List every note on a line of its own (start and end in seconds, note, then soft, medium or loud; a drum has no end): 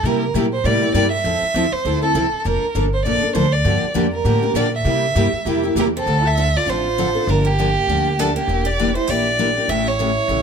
0.03 0.33 C3 medium
0.03 0.24 C3 medium
0.03 0.24 G3 medium
0.03 0.24 A#3 medium
0.03 0.24 E4 medium
0.03 0.24 G4 medium
0.03 0.35 A#4 medium
0.34 0.63 A#2 medium
0.34 0.45 C3 medium
0.34 0.45 G3 medium
0.34 0.45 A#3 medium
0.34 0.45 E4 loud
0.34 0.46 G4 medium
0.53 0.67 C5 medium
0.64 0.93 A2 medium
0.64 0.81 C3 medium
0.64 0.81 G3 medium
0.64 0.82 A#3 medium
0.64 0.82 E4 medium
0.64 0.81 G4 medium
0.64 0.94 D5 loud
0.82 0.94 A#3 soft
0.82 0.94 E4 medium
0.82 0.94 G4 medium
0.94 1.23 G2 medium
0.94 1.05 C3 loud
0.94 1.05 G3 medium
0.94 1.05 A#3 medium
0.94 1.05 E4 medium
0.94 1.05 G4 loud
0.94 1.11 D5 loud
1.12 1.74 E5 loud
1.24 1.40 F2 medium
1.24 1.44 F3 medium
1.24 1.44 C4 medium
1.24 1.44 E4 medium
1.24 1.44 A4 medium
1.42 muted upright bass stroke soft
1.54 1.71 E2 medium
1.54 1.65 F3 medium
1.54 1.66 C4 medium
1.54 1.66 E4 loud
1.54 1.66 A4 medium
1.72 2.02 C5 loud
1.72 muted upright bass stroke soft
1.85 2.14 D2 medium
1.85 2.01 F3 medium
1.85 2.02 C4 medium
1.85 2.01 E4 medium
1.85 2.00 A4 medium
2.02 2.14 C4 medium
2.02 2.14 E4 medium
2.02 2.14 A4 medium
2.02 2.40 A4 loud
2.15 2.31 C2 medium
2.15 2.25 F3 medium
2.15 2.25 C4 loud
2.15 2.25 E4 loud
2.15 2.26 A4 loud
2.32 muted upright bass stroke soft
2.40 2.48 A4 medium
2.45 2.61 F1 medium
2.45 2.64 F3 medium
2.45 2.64 A#3 medium
2.45 2.64 D4 medium
2.45 2.65 A4 medium
2.45 2.76 A#4 medium
2.63 muted upright bass stroke soft
2.75 3.04 G1 medium
2.75 2.85 F3 medium
2.75 2.86 A#3 loud
2.75 2.86 D4 loud
2.75 2.86 A4 medium
2.93 3.05 C5 medium
3.06 3.22 A#1 medium
3.06 3.22 F3 medium
3.06 3.22 A#3 medium
3.06 3.22 D4 medium
3.06 3.21 A4 medium
3.06 3.33 D5 loud
3.22 3.34 A#3 medium
3.22 3.34 D4 medium
3.22 3.34 A4 medium
3.22 muted upright bass stroke soft
3.35 3.64 D2 medium
3.35 3.45 F3 medium
3.35 3.45 A#3 medium
3.35 3.45 D4 loud
3.35 3.46 A4 loud
3.35 3.54 C5 loud
3.52 3.95 D5 medium
3.65 3.81 G2 medium
3.65 3.84 D3 medium
3.65 3.84 F3 medium
3.65 3.84 A#3 medium
3.65 3.84 D4 medium
3.65 3.85 G4 medium
3.83 muted upright bass stroke soft
3.94 4.24 F2 medium
3.94 4.05 D3 medium
3.94 4.06 F3 loud
3.94 4.06 A#3 loud
3.94 4.06 D4 medium
3.94 4.06 G4 medium
4.12 4.57 A#4 medium
4.25 4.53 A2 medium
4.25 4.42 D3 medium
4.25 4.42 F3 medium
4.25 4.42 A#3 medium
4.25 4.42 D4 medium
4.25 4.41 G4 medium
4.43 4.55 A#3 soft
4.43 4.55 D4 medium
4.43 4.55 G4 medium
4.54 4.84 A#2 medium
4.54 4.66 D3 medium
4.54 4.66 F3 medium
4.54 4.66 A#3 loud
4.54 4.66 D4 loud
4.54 4.67 G4 loud
4.54 4.73 D5 medium
4.75 5.73 E5 loud
4.85 5.15 C3 medium
4.85 5.05 C3 medium
4.85 5.05 G3 medium
4.85 5.05 A#3 medium
4.85 5.05 E4 medium
4.85 5.05 G4 medium
5.15 5.32 G2 medium
5.15 5.26 C3 medium
5.15 5.26 G3 medium
5.15 5.27 A#3 loud
5.15 5.27 E4 medium
5.15 5.27 G4 loud
5.33 muted upright bass stroke soft
5.45 5.75 F2 medium
5.45 5.63 C3 medium
5.45 5.63 G3 medium
5.45 5.63 A#3 medium
5.45 5.63 E4 medium
5.45 5.62 G4 medium
5.63 5.76 A#3 medium
5.63 5.76 E4 medium
5.63 5.76 G4 medium
5.75 6.05 E2 medium
5.75 5.87 C3 medium
5.75 5.87 G3 medium
5.75 5.87 A#3 loud
5.75 5.87 E4 medium
5.75 5.83 E4 medium
5.75 5.87 G4 loud
5.80 5.87 A#4 medium
5.97 6.26 C4 medium
5.97 6.29 A4 loud
6.06 6.54 D2 medium
6.06 6.26 D3 medium
6.06 6.26 F3 medium
6.06 6.26 C4 medium
6.06 6.26 D4 medium
6.06 6.26 A4 medium
6.26 6.57 A4 medium
6.26 6.58 E5 loud
6.37 6.47 D3 medium
6.37 6.47 F3 medium
6.37 6.47 C4 medium
6.37 6.48 D4 medium
6.37 6.48 A4 medium
6.57 6.68 F4 medium
6.57 6.71 D5 loud
6.66 7.15 A1 medium
6.66 6.86 D3 medium
6.66 6.86 F3 medium
6.66 6.86 C4 medium
6.66 6.86 D4 medium
6.66 7.29 F4 medium
6.66 6.86 A4 medium
6.66 7.31 C5 loud
6.98 7.08 D3 medium
6.98 7.08 F3 medium
6.98 7.08 C4 loud
6.98 7.08 D4 loud
6.98 7.08 A4 loud
7.15 7.27 C4 soft
7.15 7.27 D4 soft
7.15 7.27 A4 medium
7.27 7.75 G1 medium
7.27 7.47 D3 medium
7.27 7.47 F3 medium
7.27 7.47 A#3 medium
7.27 7.45 D4 medium
7.27 7.47 D4 medium
7.27 7.47 G4 medium
7.27 7.48 A#4 medium
7.45 8.19 A#3 medium
7.45 8.21 G4 loud
7.59 7.68 D3 medium
7.59 7.68 F3 loud
7.59 7.69 A#3 loud
7.59 7.69 D4 medium
7.59 7.69 G4 medium
7.87 8.35 D2 medium
7.87 8.07 D3 medium
7.87 8.07 F3 medium
7.87 8.07 A#3 medium
7.87 8.08 D4 medium
7.87 8.07 G4 medium
8.19 8.29 D3 loud
8.19 8.29 F3 medium
8.19 8.29 A#3 medium
8.19 8.36 D4 medium
8.19 8.29 D4 medium
8.19 8.29 G4 loud
8.19 8.36 A4 medium
8.36 8.63 A#3 medium
8.36 8.48 A#3 soft
8.36 8.48 D4 soft
8.36 8.68 G4 medium
8.36 8.48 G4 medium
8.48 8.96 E1 medium
8.48 8.67 E3 medium
8.48 8.67 A#3 medium
8.48 8.67 D4 medium
8.48 8.68 G4 medium
8.65 8.95 G4 medium
8.65 8.96 D5 loud
8.79 8.89 E3 medium
8.79 8.89 A#3 medium
8.79 8.89 D4 loud
8.79 8.89 G4 loud
8.95 9.07 E4 medium
8.95 9.11 C5 medium
9.07 9.56 A#1 medium
9.07 9.27 E3 medium
9.07 9.28 A#3 medium
9.07 9.28 D4 medium
9.07 9.68 G4 medium
9.07 9.28 G4 medium
9.07 9.71 D5 loud
9.39 9.49 E3 medium
9.39 9.49 A#3 loud
9.39 9.49 D4 loud
9.39 9.49 G4 loud
9.57 9.69 A#3 soft
9.57 9.69 D4 soft
9.57 9.68 G4 soft
9.68 10.16 A1 medium
9.68 9.88 C#3 medium
9.68 9.88 E3 medium
9.68 9.88 A3 medium
9.68 9.88 C#4 medium
9.68 9.87 G4 medium
9.68 9.88 G4 medium
9.68 9.89 E5 loud
9.87 10.42 E4 medium
9.87 10.42 C#5 loud
9.99 10.09 C#3 medium
9.99 10.09 E3 medium
9.99 10.09 A3 medium
9.99 10.09 C#4 medium
9.99 10.10 G4 medium
10.28 10.42 A#1 medium
10.28 10.42 C#3 medium
10.28 10.42 E3 medium
10.28 10.42 A3 medium
10.28 10.42 C#4 medium
10.28 10.42 G4 medium